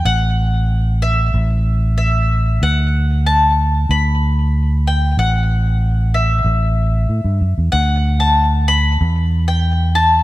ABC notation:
X:1
M:4/4
L:1/16
Q:1/4=94
K:D
V:1 name="Mandolin"
f6 e6 e4 | f4 a4 b6 g2 | f6 e8 z2 | f3 a3 b4- b g3 a2 |]
V:2 name="Fingered electric bass" clef=bass
A,,,8 A,,,8 | D,,8 D,,8 | A,,,8 A,,,4 A,, G,, F,, E,, | D,,8 E,,8 |]